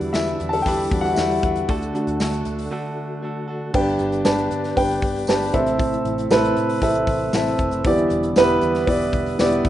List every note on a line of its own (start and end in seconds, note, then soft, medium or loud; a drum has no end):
0.00 0.12 E2 medium
0.00 3.70 D3 medium
0.00 0.15 E3 medium
0.00 0.13 G3 medium
0.00 0.91 G3 medium
0.00 1.67 G3 medium
0.00 0.15 D4 medium
0.00 0.91 D4 medium
0.00 0.15 E4 loud
0.00 1.67 E4 medium
0.00 0.92 F#4 medium
0.00 0.16 B4 loud
0.00 open hi-hat medium
0.13 0.35 E2 medium
0.13 0.65 G3 medium
0.13 0.67 D4 medium
0.13 0.51 E4 medium
0.13 0.66 E4 medium
0.13 0.67 B4 medium
0.13 0.49 E5 medium
0.13 snare loud
0.13 hi-hat pedal medium
0.13 open hi-hat medium
0.13 tambourine medium
0.27 hi-hat pedal medium
0.27 open hi-hat soft
0.40 0.62 E2 medium
0.40 hi-hat pedal medium
0.40 open hi-hat medium
0.49 0.63 A5 medium
0.49 hi-hat pedal medium
0.49 open hi-hat medium
0.53 0.65 A4 medium
0.62 0.87 E2 medium
0.62 1.04 G5 medium
0.62 kick medium
0.62 hi-hat pedal medium
0.66 1.17 E3 medium
0.66 1.16 G3 medium
0.66 1.18 D4 medium
0.66 1.18 E4 medium
0.66 1.02 G4 medium
0.66 1.18 B4 loud
0.66 open hi-hat loud
0.79 hi-hat pedal medium
0.79 open hi-hat soft
0.91 1.13 E2 loud
0.91 1.15 G3 medium
0.91 1.15 D4 soft
0.91 1.04 F#4 medium
0.91 kick loud
0.91 hi-hat pedal medium
0.91 open hi-hat medium
1.01 1.16 F#5 loud
1.01 hi-hat pedal medium
1.01 open hi-hat soft
1.05 1.17 F#4 medium
1.13 1.51 E5 medium
1.13 tambourine medium
1.17 1.39 E2 loud
1.17 1.43 G3 medium
1.17 1.44 D4 medium
1.17 1.53 E4 medium
1.17 1.44 E4 medium
1.17 1.42 B4 medium
1.17 snare loud
1.17 hi-hat pedal medium
1.17 open hi-hat medium
1.30 hi-hat pedal medium
1.30 open hi-hat soft
1.43 1.64 E2 medium
1.43 1.69 D4 soft
1.43 1.69 E4 soft
1.43 1.69 B4 medium
1.43 kick medium
1.43 hi-hat pedal medium
1.43 open hi-hat medium
1.56 hi-hat pedal medium
1.56 open hi-hat medium
1.69 1.90 D2 medium
1.69 2.70 D3 medium
1.69 3.72 A3 medium
1.69 2.19 A3 medium
1.69 2.20 D4 medium
1.69 3.72 F#4 medium
1.69 2.20 F#4 loud
1.69 2.21 A4 loud
1.69 kick medium
1.69 hi-hat pedal medium
1.69 open hi-hat medium
1.82 hi-hat pedal medium
1.82 open hi-hat soft
1.94 2.68 A3 medium
1.94 2.68 D4 medium
1.94 2.68 F#4 medium
1.94 hi-hat pedal medium
1.94 open hi-hat medium
2.07 2.18 D2 loud
2.07 hi-hat pedal medium
2.07 open hi-hat medium
2.20 2.42 D2 medium
2.20 2.70 A3 medium
2.20 2.72 D4 medium
2.20 2.71 F#4 medium
2.20 2.72 A4 medium
2.20 snare loud
2.20 hi-hat pedal medium
2.20 open hi-hat medium
2.20 tambourine medium
2.33 hi-hat pedal medium
2.33 open hi-hat soft
2.45 2.67 D2 loud
2.45 hi-hat pedal medium
2.45 open hi-hat medium
2.59 hi-hat pedal medium
2.59 open hi-hat medium
2.71 4.25 D3 medium
2.71 3.21 A3 medium
2.71 3.23 D4 medium
2.71 3.23 F#4 medium
2.71 3.23 A4 loud
3.22 3.48 A3 medium
3.22 3.49 D4 medium
3.22 3.48 F#4 medium
3.22 3.47 A4 medium
3.48 3.75 D4 soft
3.48 3.74 F#4 soft
3.48 3.74 A4 medium
3.74 3.95 G1 medium
3.74 4.47 G2 medium
3.74 5.52 D3 medium
3.74 5.52 B3 medium
3.74 4.20 D4 medium
3.74 4.20 G4 medium
3.74 5.52 G4 medium
3.74 4.21 B4 medium
3.74 4.21 G5 medium
3.74 kick loud
3.74 crash medium
3.87 open hi-hat soft
3.99 4.21 G1 medium
3.99 hi-hat pedal medium
3.99 open hi-hat medium
4.12 hi-hat pedal medium
4.12 open hi-hat medium
4.25 4.47 G1 loud
4.25 4.71 D4 medium
4.25 4.72 G4 medium
4.25 4.72 B4 medium
4.25 4.72 A5 medium
4.25 snare loud
4.25 hi-hat pedal medium
4.25 open hi-hat medium
4.25 tambourine medium
4.38 hi-hat pedal medium
4.51 4.72 G2 loud
4.51 hi-hat pedal medium
4.51 open hi-hat medium
4.64 snare soft
4.64 open hi-hat medium
4.76 4.98 G1 medium
4.76 5.23 D4 medium
4.76 5.23 G4 medium
4.76 5.23 B4 medium
4.76 5.23 G5 medium
4.76 kick medium
4.76 hi-hat pedal medium
4.76 open hi-hat loud
4.90 hi-hat pedal medium
4.90 open hi-hat soft
5.02 5.23 G1 medium
5.02 kick medium
5.02 hi-hat pedal medium
5.02 open hi-hat medium
5.16 hi-hat pedal medium
5.16 open hi-hat medium
5.27 5.49 G1 medium
5.27 5.54 D4 medium
5.27 5.54 G4 medium
5.27 5.54 B4 medium
5.27 5.54 A5 medium
5.27 snare loud
5.27 hi-hat pedal medium
5.27 open hi-hat medium
5.27 tambourine medium
5.42 hi-hat pedal medium
5.42 open hi-hat soft
5.53 5.96 A1 loud
5.53 6.27 A2 medium
5.53 7.82 C3 medium
5.53 7.82 A3 medium
5.53 6.23 C4 medium
5.53 6.23 E4 medium
5.53 9.69 E4 medium
5.53 6.23 A4 medium
5.53 6.23 E5 medium
5.53 kick medium
5.53 hi-hat pedal medium
5.53 open hi-hat medium
5.66 hi-hat pedal medium
5.66 open hi-hat medium
5.79 kick loud
5.79 hi-hat pedal medium
5.79 open hi-hat medium
5.93 hi-hat pedal medium
5.93 open hi-hat soft
6.05 6.26 A1 medium
6.05 hi-hat pedal medium
6.05 open hi-hat medium
6.18 hi-hat pedal medium
6.18 open hi-hat medium
6.30 6.52 A1 medium
6.30 6.77 C4 medium
6.30 6.77 E4 medium
6.30 6.77 A4 medium
6.30 6.77 B4 loud
6.30 snare loud
6.30 hi-hat pedal medium
6.30 open hi-hat medium
6.30 tambourine medium
6.44 hi-hat pedal medium
6.44 open hi-hat soft
6.57 6.78 A2 medium
6.57 hi-hat pedal medium
6.57 open hi-hat medium
6.69 hi-hat pedal medium
6.69 open hi-hat medium
6.81 7.03 A1 loud
6.81 7.28 C4 medium
6.81 7.28 E4 medium
6.81 7.29 A4 medium
6.81 7.29 E5 medium
6.81 kick medium
6.81 hi-hat pedal medium
6.81 open hi-hat loud
6.94 hi-hat pedal medium
7.07 7.29 A1 loud
7.07 kick medium
7.07 hi-hat pedal medium
7.07 open hi-hat medium
7.20 open hi-hat soft
7.33 7.54 A1 loud
7.33 7.80 C4 medium
7.33 7.80 E4 medium
7.33 7.80 A4 medium
7.33 7.81 E5 medium
7.33 snare loud
7.33 hi-hat pedal medium
7.33 open hi-hat medium
7.33 tambourine medium
7.46 hi-hat pedal medium
7.46 open hi-hat soft
7.58 7.85 F#1 medium
7.58 kick medium
7.58 hi-hat pedal medium
7.58 open hi-hat medium
7.71 hi-hat pedal medium
7.71 open hi-hat medium
7.84 8.06 E1 loud
7.84 9.69 D3 medium
7.84 8.59 E3 medium
7.84 9.69 G3 medium
7.84 8.32 B3 medium
7.84 8.32 E4 medium
7.84 8.32 G4 medium
7.84 8.32 D5 loud
7.84 kick loud
7.84 hi-hat pedal medium
7.84 open hi-hat medium
7.97 hi-hat pedal medium
7.97 open hi-hat soft
8.10 8.32 E1 loud
8.10 hi-hat pedal medium
8.10 open hi-hat medium
8.23 hi-hat pedal medium
8.23 open hi-hat medium
8.36 8.58 E1 loud
8.36 8.83 B3 medium
8.36 8.83 E4 medium
8.36 8.83 G4 medium
8.36 8.83 B4 loud
8.36 snare loud
8.36 hi-hat pedal medium
8.36 open hi-hat loud
8.36 tambourine medium
8.49 hi-hat pedal medium
8.61 8.83 E2 medium
8.61 hi-hat pedal medium
8.61 open hi-hat medium
8.75 snare soft
8.75 open hi-hat soft
8.87 9.08 E1 loud
8.87 9.34 B3 medium
8.87 9.34 E4 medium
8.87 9.34 G4 medium
8.87 9.34 D5 medium
8.87 kick medium
8.87 hi-hat pedal medium
8.87 open hi-hat loud
9.00 hi-hat pedal medium
9.00 open hi-hat soft
9.13 9.34 E1 loud
9.13 kick medium
9.13 hi-hat pedal medium
9.13 open hi-hat medium
9.26 hi-hat pedal medium
9.26 open hi-hat soft
9.39 9.60 E1 medium
9.39 9.69 B3 medium
9.39 9.69 E4 medium
9.39 9.69 G4 medium
9.39 9.69 D5 loud
9.39 snare loud
9.39 hi-hat pedal medium
9.39 open hi-hat loud
9.39 tambourine medium
9.52 hi-hat pedal medium
9.65 9.69 C2 medium
9.65 kick loud
9.65 hi-hat pedal medium
9.65 open hi-hat medium